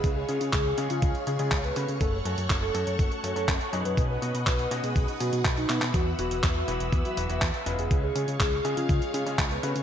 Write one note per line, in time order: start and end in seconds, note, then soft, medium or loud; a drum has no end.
0.00 0.24 C#2 medium
0.00 0.26 C#3 medium
0.00 0.26 G#3 medium
0.00 0.26 C#4 medium
0.00 0.26 F4 medium
0.00 1.99 G#4 medium
0.00 0.26 B4 loud
0.00 kick loud
0.00 closed hi-hat medium
0.04 3.94 C#5 medium
0.04 1.99 F5 medium
0.04 5.90 C#6 medium
0.16 0.41 G#4 medium
0.29 0.46 C#3 medium
0.29 0.39 C#3 medium
0.29 0.46 G#3 medium
0.29 0.46 C#4 medium
0.29 0.46 F4 medium
0.29 0.46 G#4 medium
0.29 closed hi-hat medium
0.41 0.51 C#3 medium
0.41 closed hi-hat soft
0.53 0.74 C#2 loud
0.53 0.78 G#4 medium
0.53 kick loud
0.53 clap loud
0.53 closed hi-hat medium
0.78 1.24 C#3 loud
0.78 0.88 C#3 medium
0.78 1.24 G#3 medium
0.78 1.24 C#4 medium
0.78 1.24 F4 medium
0.78 1.24 G#4 loud
0.78 closed hi-hat medium
0.90 1.00 C#3 loud
0.90 1.15 F4 medium
0.90 closed hi-hat soft
1.02 1.13 C#2 loud
1.02 kick loud
1.02 closed hi-hat medium
1.15 closed hi-hat soft
1.27 1.36 C#3 medium
1.27 1.37 C#3 medium
1.27 1.36 G#3 medium
1.27 1.36 C#4 medium
1.27 1.36 F4 medium
1.27 1.52 G#4 medium
1.27 1.36 G#4 medium
1.27 closed hi-hat medium
1.39 1.57 C#3 medium
1.39 1.50 C#3 loud
1.39 1.57 G#3 medium
1.39 1.57 C#4 medium
1.39 1.57 F4 medium
1.39 1.57 G#4 medium
1.39 closed hi-hat soft
1.51 1.72 C#2 medium
1.51 kick loud
1.51 clap loud
1.51 closed hi-hat medium
1.64 1.89 B4 medium
1.64 closed hi-hat soft
1.76 1.87 C#3 medium
1.76 2.23 A3 medium
1.76 2.22 C#4 medium
1.76 2.22 F#4 medium
1.76 2.23 B4 loud
1.76 closed hi-hat medium
1.89 1.99 C#3 medium
1.89 closed hi-hat soft
2.00 2.21 F#1 loud
2.00 2.17 A4 loud
2.00 3.96 A4 medium
2.00 7.87 F#5 medium
2.00 kick loud
2.00 closed hi-hat medium
2.25 2.36 F#2 medium
2.25 2.43 A3 medium
2.25 2.43 C#4 medium
2.25 2.43 F#4 medium
2.25 2.50 A4 medium
2.25 2.43 A4 medium
2.25 closed hi-hat medium
2.38 2.48 F#2 medium
2.38 closed hi-hat medium
2.50 2.70 F#1 medium
2.50 kick loud
2.50 clap loud
2.50 closed hi-hat medium
2.62 2.95 A4 loud
2.74 2.85 F#2 medium
2.74 3.21 A3 loud
2.74 3.21 C#4 medium
2.74 3.21 F#4 medium
2.74 3.21 A4 loud
2.74 closed hi-hat medium
2.87 2.97 F#2 loud
2.87 closed hi-hat soft
2.99 3.09 F#1 medium
2.99 kick loud
2.99 closed hi-hat medium
3.11 3.44 A4 loud
3.11 closed hi-hat soft
3.24 3.34 F#2 medium
3.24 3.33 A3 medium
3.24 3.33 C#4 medium
3.24 3.33 F#4 medium
3.24 3.33 A4 medium
3.24 closed hi-hat medium
3.36 3.46 F#2 medium
3.36 3.54 A3 medium
3.36 3.54 C#4 medium
3.36 3.54 F#4 medium
3.36 3.54 A4 loud
3.36 closed hi-hat soft
3.48 3.58 F#1 loud
3.48 kick loud
3.48 clap loud
3.48 closed hi-hat medium
3.61 closed hi-hat soft
3.73 3.83 F#2 loud
3.73 4.19 B2 medium
3.73 4.19 B3 medium
3.73 4.19 C#4 medium
3.73 4.19 D#4 medium
3.73 4.19 G#4 loud
3.73 closed hi-hat medium
3.85 3.95 F#2 medium
3.85 4.02 B4 medium
3.85 closed hi-hat soft
3.97 4.18 B1 loud
3.97 7.87 B4 medium
3.97 5.92 D#5 medium
3.97 kick loud
3.97 closed hi-hat medium
4.10 4.35 B4 medium
4.22 4.40 B2 medium
4.22 4.32 B2 medium
4.22 4.40 B3 medium
4.22 4.40 C#4 medium
4.22 4.40 D#4 medium
4.22 4.40 F#4 medium
4.22 closed hi-hat medium
4.34 4.45 B2 medium
4.34 closed hi-hat medium
4.47 4.67 B1 loud
4.47 4.71 B4 medium
4.47 kick loud
4.47 clap loud
4.47 closed hi-hat medium
4.59 closed hi-hat soft
4.71 4.81 B2 medium
4.71 5.18 B2 medium
4.71 5.18 B3 medium
4.71 5.18 C#4 medium
4.71 5.18 D#4 medium
4.71 5.18 F#4 loud
4.71 closed hi-hat medium
4.83 4.94 B2 loud
4.83 5.08 G#4 loud
4.83 closed hi-hat soft
4.96 5.06 B1 loud
4.96 kick loud
4.96 closed hi-hat medium
5.08 closed hi-hat soft
5.20 5.38 B2 medium
5.20 5.31 B2 medium
5.20 5.38 B3 medium
5.20 5.38 C#4 medium
5.20 5.38 D#4 medium
5.20 5.45 F#4 loud
5.20 5.38 G#4 medium
5.20 closed hi-hat medium
5.33 5.43 B2 loud
5.33 closed hi-hat medium
5.45 5.65 B1 medium
5.45 kick loud
5.45 clap loud
5.45 closed hi-hat medium
5.57 5.82 D#4 medium
5.57 closed hi-hat soft
5.69 5.80 B2 medium
5.69 6.16 E3 medium
5.69 6.16 B3 medium
5.69 6.16 E4 medium
5.69 6.16 F#4 medium
5.69 6.16 B4 medium
5.69 clap medium
5.69 closed hi-hat medium
5.82 5.92 B2 medium
5.82 clap medium
5.82 closed hi-hat medium
5.94 6.15 E2 loud
5.94 6.11 F#4 loud
5.94 7.89 E5 medium
5.94 7.89 E6 medium
5.94 kick loud
5.94 closed hi-hat medium
6.19 6.29 E1 medium
6.19 6.36 E3 medium
6.19 6.36 B3 medium
6.19 6.36 E4 medium
6.19 6.36 F#4 medium
6.19 6.44 F#4 medium
6.19 6.36 B4 medium
6.19 closed hi-hat medium
6.31 6.41 E1 medium
6.31 closed hi-hat medium
6.43 6.64 E2 loud
6.43 kick loud
6.43 clap loud
6.43 closed hi-hat medium
6.56 6.89 F#4 medium
6.68 6.78 E1 medium
6.68 7.14 E3 medium
6.68 7.14 B3 medium
6.68 7.14 E4 medium
6.68 7.14 F#4 medium
6.68 7.14 B4 loud
6.68 closed hi-hat medium
6.80 6.91 E1 loud
6.80 closed hi-hat medium
6.92 7.03 E2 medium
6.92 kick loud
6.92 closed hi-hat medium
7.05 7.38 F#4 loud
7.05 closed hi-hat soft
7.17 7.27 E1 medium
7.17 7.27 E3 medium
7.17 7.27 B3 medium
7.17 7.27 E4 medium
7.17 7.27 F#4 medium
7.17 7.27 B4 medium
7.17 closed hi-hat medium
7.29 7.40 E1 medium
7.29 7.47 E3 medium
7.29 7.47 B3 medium
7.29 7.47 E4 medium
7.29 7.47 F#4 medium
7.29 7.47 B4 medium
7.29 closed hi-hat medium
7.42 7.52 E2 loud
7.42 kick loud
7.42 clap loud
7.42 closed hi-hat medium
7.54 closed hi-hat soft
7.66 7.76 E1 medium
7.66 8.13 C#3 loud
7.66 8.13 G#3 medium
7.66 8.13 C#4 medium
7.66 8.13 F4 medium
7.66 8.13 B4 loud
7.66 closed hi-hat medium
7.79 7.89 E1 medium
7.79 7.95 G#4 medium
7.79 closed hi-hat medium
7.91 8.11 C#2 medium
7.91 9.83 G#4 medium
7.91 9.83 C#5 medium
7.91 9.83 F5 medium
7.91 9.83 C#6 medium
7.91 kick loud
7.91 closed hi-hat medium
8.03 8.28 G#4 loud
8.15 8.33 C#3 medium
8.15 8.26 C#3 medium
8.15 8.33 G#3 medium
8.15 8.33 C#4 medium
8.15 8.33 F4 medium
8.15 8.33 G#4 medium
8.15 closed hi-hat medium
8.28 8.38 C#3 medium
8.28 closed hi-hat medium
8.40 8.60 C#2 loud
8.40 8.65 G#4 medium
8.40 kick loud
8.40 clap loud
8.40 closed hi-hat medium
8.65 9.11 C#3 loud
8.65 8.75 C#3 medium
8.65 9.11 G#3 medium
8.65 9.11 C#4 medium
8.65 9.11 F4 medium
8.65 9.11 G#4 loud
8.65 closed hi-hat medium
8.77 8.87 C#3 loud
8.77 9.02 F4 loud
8.77 closed hi-hat medium
8.89 9.00 C#2 loud
8.89 kick loud
8.89 closed hi-hat medium
9.02 closed hi-hat soft
9.14 9.24 C#3 medium
9.14 9.23 C#3 medium
9.14 9.23 G#3 medium
9.14 9.23 C#4 medium
9.14 9.23 F4 medium
9.14 9.39 G#4 loud
9.14 9.23 G#4 medium
9.14 closed hi-hat medium
9.26 9.36 C#3 loud
9.26 9.44 C#3 medium
9.26 9.44 G#3 medium
9.26 9.44 C#4 medium
9.26 9.44 F4 medium
9.26 9.44 G#4 medium
9.26 closed hi-hat medium
9.38 9.59 C#2 medium
9.38 kick loud
9.38 clap loud
9.38 closed hi-hat medium
9.51 9.76 B4 loud
9.51 closed hi-hat soft
9.63 9.73 C#3 medium
9.63 9.83 A3 medium
9.63 9.83 C#4 medium
9.63 9.83 F#4 medium
9.63 9.83 B4 loud
9.63 closed hi-hat medium
9.76 9.83 C#3 medium
9.76 closed hi-hat medium